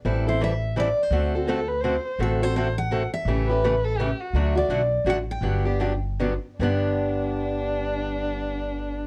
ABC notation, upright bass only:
X:1
M:3/4
L:1/8
Q:"Swing" 1/4=168
K:G
V:1 name="Upright bass" clef=bass
A,,,6 | D,,6 | A,,,6 | A,,,6 |
D,,2 B,,,2 A,,,2 | G,,,6 | G,,,6- | G,,,6 |]